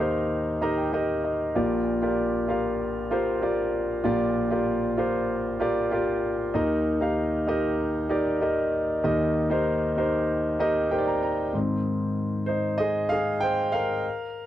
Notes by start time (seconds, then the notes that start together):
Already playing: D#2 D#3 D#5 F5
0.00 D#4 G4 A#4 C5
0.61 D#4 G4 A#4 D#5 A#5
0.78 G5
0.92 D#4 G4 A#4 D#5 G5
1.24 D#5
1.55 A#1 A#2 F4 G4 A#4 D5
2.02 F4 G4 A#4 D5
2.48 F4 G4 A#4 F5
3.11 F4 G4 A#4 C5
3.42 F4 G4 A#4 D5
4.04 A#1 A#2 F4 G4 A#4 D5
4.50 F4 G4 A#4 D5
4.97 F4 G4 A#4 C5
5.60 F4 G4 A#4 D5
5.91 F4 G4 A#4 D5
6.54 D#2 D#3 D#4 G4 A#4 D#5
7.01 D#4 G4 A#4 F5
7.47 D#4 G4 A#4 D#5
8.09 D#4 G4 A#4 D5
8.41 D#4 G4 A#4 D#5
9.03 D#2 D#3 D#4 G4 A#4 D#5
9.50 D#4 G4 A#4 C5
9.97 D#4 G4 A#4 C5
10.59 D#4 G4 A#4 D#5
10.91 D#4 G4 A#4 C5 G5
10.98 D5
11.07 A#5
11.23 A#5
11.53 G#2 D#3 C4
12.46 D#4 C5
12.78 G#4 D#5
13.09 G#4 F5
13.40 C5 G5
13.72 A#4 F5